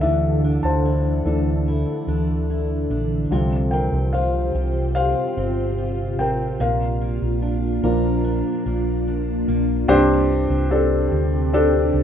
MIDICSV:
0, 0, Header, 1, 5, 480
1, 0, Start_track
1, 0, Tempo, 821918
1, 16, Time_signature, 4, 2, 24, 8
1, 7026, End_track
2, 0, Start_track
2, 0, Title_t, "Felt piano"
2, 0, Program_c, 0, 0
2, 0, Control_c, 0, 64, 127
2, 0, Note_on_c, 0, 67, 57
2, 0, Note_on_c, 0, 69, 49
2, 0, Note_on_c, 0, 74, 61
2, 0, Note_on_c, 0, 76, 70
2, 0, Note_on_c, 0, 77, 64
2, 7, Note_off_c, 0, 76, 0
2, 7, Note_on_c, 0, 76, 84
2, 12, Note_on_c, 0, 52, 48
2, 15, Note_on_c, 0, 57, 39
2, 18, Note_on_c, 0, 62, 50
2, 20, Note_off_c, 0, 69, 0
2, 20, Note_on_c, 0, 69, 61
2, 348, Note_off_c, 0, 76, 0
2, 355, Note_off_c, 0, 69, 0
2, 367, Note_on_c, 0, 81, 74
2, 380, Note_on_c, 0, 72, 64
2, 722, Note_off_c, 0, 52, 0
2, 725, Note_off_c, 0, 57, 0
2, 726, Note_off_c, 0, 62, 0
2, 731, Note_on_c, 0, 52, 41
2, 734, Note_on_c, 0, 57, 39
2, 735, Note_on_c, 0, 62, 44
2, 950, Note_off_c, 0, 52, 0
2, 952, Note_off_c, 0, 57, 0
2, 952, Note_off_c, 0, 62, 0
2, 1068, Note_off_c, 0, 81, 0
2, 1075, Note_off_c, 0, 72, 0
2, 1930, Note_on_c, 0, 53, 51
2, 1934, Note_on_c, 0, 55, 48
2, 1937, Note_on_c, 0, 60, 52
2, 1943, Control_c, 0, 64, 0
2, 1946, Note_off_c, 0, 67, 0
2, 1946, Note_off_c, 0, 74, 0
2, 1947, Note_off_c, 0, 77, 0
2, 2029, Control_c, 0, 64, 127
2, 2166, Note_on_c, 0, 79, 72
2, 2176, Note_on_c, 0, 70, 61
2, 2400, Note_off_c, 0, 70, 0
2, 2410, Note_on_c, 0, 77, 72
2, 2419, Note_off_c, 0, 79, 0
2, 2419, Note_on_c, 0, 72, 62
2, 2630, Note_off_c, 0, 53, 0
2, 2632, Note_off_c, 0, 55, 0
2, 2633, Note_off_c, 0, 60, 0
2, 2870, Note_off_c, 0, 77, 0
2, 2874, Note_off_c, 0, 72, 0
2, 2890, Note_on_c, 0, 77, 92
2, 2898, Note_on_c, 0, 72, 65
2, 3594, Note_off_c, 0, 72, 0
2, 3615, Note_on_c, 0, 79, 75
2, 3623, Note_on_c, 0, 70, 57
2, 3635, Note_off_c, 0, 77, 0
2, 3839, Note_off_c, 0, 79, 0
2, 3843, Note_off_c, 0, 70, 0
2, 3859, Note_on_c, 0, 77, 84
2, 3863, Note_on_c, 0, 70, 56
2, 3864, Control_c, 0, 64, 0
2, 3959, Control_c, 0, 64, 127
2, 4576, Note_on_c, 0, 53, 54
2, 4578, Note_on_c, 0, 58, 49
2, 4582, Note_on_c, 0, 62, 57
2, 5273, Note_off_c, 0, 53, 0
2, 5274, Note_off_c, 0, 58, 0
2, 5274, Note_off_c, 0, 77, 0
2, 5276, Note_off_c, 0, 62, 0
2, 5276, Note_off_c, 0, 70, 0
2, 5772, Note_on_c, 0, 60, 104
2, 5772, Note_on_c, 0, 62, 106
2, 5773, Note_on_c, 0, 43, 78
2, 5774, Note_on_c, 0, 67, 104
2, 5775, Note_on_c, 0, 72, 123
2, 5783, Control_c, 0, 64, 0
2, 5898, Control_c, 0, 64, 127
2, 6230, Note_off_c, 0, 60, 0
2, 6230, Note_off_c, 0, 62, 0
2, 6231, Note_off_c, 0, 67, 0
2, 6232, Note_off_c, 0, 72, 0
2, 6252, Note_on_c, 0, 60, 84
2, 6254, Note_on_c, 0, 67, 80
2, 6256, Note_on_c, 0, 62, 76
2, 6257, Note_on_c, 0, 69, 85
2, 6471, Note_off_c, 0, 43, 0
2, 6710, Note_off_c, 0, 60, 0
2, 6711, Note_off_c, 0, 67, 0
2, 6712, Note_off_c, 0, 62, 0
2, 6712, Note_off_c, 0, 69, 0
2, 6735, Note_on_c, 0, 60, 84
2, 6737, Note_on_c, 0, 62, 89
2, 6739, Note_on_c, 0, 67, 84
2, 6740, Note_on_c, 0, 69, 106
2, 7026, Note_off_c, 0, 60, 0
2, 7026, Note_off_c, 0, 62, 0
2, 7026, Note_off_c, 0, 67, 0
2, 7026, Note_off_c, 0, 69, 0
2, 7026, End_track
3, 0, Start_track
3, 0, Title_t, "Steel-string acoustic guitar"
3, 0, Program_c, 1, 25
3, 0, Note_on_c, 1, 62, 47
3, 0, Note_on_c, 1, 64, 45
3, 0, Note_on_c, 1, 69, 44
3, 19, Note_on_c, 1, 50, 61
3, 252, Note_off_c, 1, 62, 0
3, 259, Note_on_c, 1, 62, 42
3, 492, Note_off_c, 1, 64, 0
3, 499, Note_on_c, 1, 64, 46
3, 733, Note_off_c, 1, 69, 0
3, 740, Note_on_c, 1, 69, 52
3, 973, Note_off_c, 1, 64, 0
3, 980, Note_on_c, 1, 64, 47
3, 1210, Note_off_c, 1, 62, 0
3, 1217, Note_on_c, 1, 62, 49
3, 1452, Note_off_c, 1, 64, 0
3, 1459, Note_on_c, 1, 64, 51
3, 1690, Note_off_c, 1, 62, 0
3, 1697, Note_on_c, 1, 62, 47
3, 1936, Note_off_c, 1, 50, 0
3, 1938, Note_on_c, 1, 48, 72
3, 1985, Note_off_c, 1, 62, 0
3, 1985, Note_off_c, 1, 64, 0
3, 1986, Note_off_c, 1, 69, 0
3, 2178, Note_on_c, 1, 60, 50
3, 2418, Note_on_c, 1, 65, 55
3, 2655, Note_on_c, 1, 67, 51
3, 2893, Note_off_c, 1, 65, 0
3, 2895, Note_on_c, 1, 65, 50
3, 3131, Note_off_c, 1, 60, 0
3, 3138, Note_on_c, 1, 60, 50
3, 3375, Note_off_c, 1, 65, 0
3, 3378, Note_on_c, 1, 65, 51
3, 3610, Note_off_c, 1, 60, 0
3, 3617, Note_on_c, 1, 60, 49
3, 3855, Note_on_c, 1, 46, 64
3, 3857, Note_off_c, 1, 48, 0
3, 3904, Note_off_c, 1, 60, 0
3, 3904, Note_off_c, 1, 67, 0
3, 4096, Note_on_c, 1, 58, 41
3, 4332, Note_off_c, 1, 65, 0
3, 4334, Note_on_c, 1, 62, 49
3, 4575, Note_on_c, 1, 70, 60
3, 4812, Note_off_c, 1, 62, 0
3, 4814, Note_on_c, 1, 62, 54
3, 5051, Note_off_c, 1, 58, 0
3, 5058, Note_on_c, 1, 58, 52
3, 5296, Note_off_c, 1, 62, 0
3, 5298, Note_on_c, 1, 62, 53
3, 5531, Note_off_c, 1, 58, 0
3, 5538, Note_on_c, 1, 58, 50
3, 5775, Note_off_c, 1, 46, 0
3, 5824, Note_off_c, 1, 70, 0
3, 5825, Note_off_c, 1, 58, 0
3, 6117, Note_off_c, 1, 62, 0
3, 7026, End_track
4, 0, Start_track
4, 0, Title_t, "Ambient pad"
4, 0, Program_c, 2, 92
4, 0, Note_on_c, 2, 50, 72
4, 0, Note_on_c, 2, 52, 60
4, 0, Note_on_c, 2, 62, 67
4, 0, Note_on_c, 2, 69, 81
4, 1910, Note_off_c, 2, 50, 0
4, 1910, Note_off_c, 2, 62, 0
4, 1912, Note_off_c, 2, 52, 0
4, 1912, Note_off_c, 2, 69, 0
4, 1934, Note_on_c, 2, 48, 81
4, 1934, Note_on_c, 2, 67, 85
4, 1937, Note_on_c, 2, 60, 65
4, 1937, Note_on_c, 2, 65, 72
4, 3836, Note_off_c, 2, 48, 0
4, 3836, Note_off_c, 2, 67, 0
4, 3837, Note_off_c, 2, 60, 0
4, 3854, Note_on_c, 2, 62, 69
4, 3856, Note_on_c, 2, 58, 76
4, 5753, Note_off_c, 2, 65, 0
4, 5756, Note_off_c, 2, 62, 0
4, 5757, Note_off_c, 2, 58, 0
4, 5778, Note_on_c, 2, 62, 82
4, 5779, Note_on_c, 2, 48, 86
4, 5780, Note_on_c, 2, 60, 79
4, 5780, Note_on_c, 2, 67, 91
4, 7026, Note_off_c, 2, 48, 0
4, 7026, Note_off_c, 2, 60, 0
4, 7026, Note_off_c, 2, 62, 0
4, 7026, Note_off_c, 2, 67, 0
4, 7026, End_track
5, 0, Start_track
5, 0, Title_t, "Fingered electric bass"
5, 0, Program_c, 3, 33
5, 13, Note_on_c, 3, 38, 73
5, 351, Note_off_c, 3, 38, 0
5, 372, Note_on_c, 3, 38, 83
5, 711, Note_off_c, 3, 38, 0
5, 732, Note_on_c, 3, 38, 81
5, 1071, Note_off_c, 3, 38, 0
5, 1210, Note_on_c, 3, 38, 72
5, 1670, Note_off_c, 3, 38, 0
5, 1694, Note_on_c, 3, 34, 71
5, 1918, Note_off_c, 3, 34, 0
5, 1931, Note_on_c, 3, 36, 67
5, 2270, Note_off_c, 3, 36, 0
5, 2293, Note_on_c, 3, 36, 76
5, 2631, Note_off_c, 3, 36, 0
5, 2654, Note_on_c, 3, 36, 79
5, 2992, Note_off_c, 3, 36, 0
5, 3136, Note_on_c, 3, 31, 82
5, 3618, Note_off_c, 3, 31, 0
5, 3618, Note_on_c, 3, 33, 76
5, 3840, Note_off_c, 3, 33, 0
5, 3855, Note_on_c, 3, 34, 82
5, 4192, Note_off_c, 3, 34, 0
5, 4216, Note_on_c, 3, 34, 83
5, 4553, Note_off_c, 3, 34, 0
5, 4574, Note_on_c, 3, 34, 85
5, 4912, Note_off_c, 3, 34, 0
5, 5057, Note_on_c, 3, 34, 78
5, 5513, Note_off_c, 3, 34, 0
5, 5535, Note_on_c, 3, 34, 82
5, 5759, Note_off_c, 3, 34, 0
5, 5773, Note_on_c, 3, 36, 88
5, 6111, Note_off_c, 3, 36, 0
5, 6132, Note_on_c, 3, 36, 90
5, 6471, Note_off_c, 3, 36, 0
5, 6492, Note_on_c, 3, 38, 88
5, 6951, Note_off_c, 3, 38, 0
5, 6971, Note_on_c, 3, 36, 91
5, 7026, Note_off_c, 3, 36, 0
5, 7026, End_track
0, 0, End_of_file